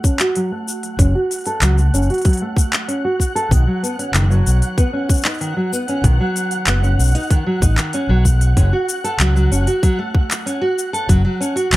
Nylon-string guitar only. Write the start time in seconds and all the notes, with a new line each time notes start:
0.05 C#4
0.20 F#4
0.36 F#3
0.52 A3
0.99 C#4
1.15 F#4
1.46 A4
1.62 F#3
1.79 A3
1.94 C#4
2.10 F#4
2.26 F#3
2.42 A3
2.88 C#4
3.05 F#4
3.36 A4
3.52 D#3
3.67 F#3
3.83 B3
3.99 C#4
4.14 D#3
4.30 F#3
4.78 B3
4.93 C#4
5.25 D#4
5.41 D#3
5.56 F#3
5.73 B3
5.89 C#4
6.05 D#3
6.20 F#3
6.67 B3
6.83 C#4
7.15 D#4
7.31 D#3
7.47 F#3
7.62 D#4
7.78 D#3
7.94 C#4
8.10 F#3
8.57 C#4
8.73 F#4
9.04 A4
9.20 F#3
9.36 F#3
9.52 C#4
9.67 F#4
9.83 F#3
9.99 A3
10.46 C#4
10.62 F#4
10.93 A4
11.09 F#3
11.25 F#3
11.40 C#4
11.56 F#4
11.72 F#3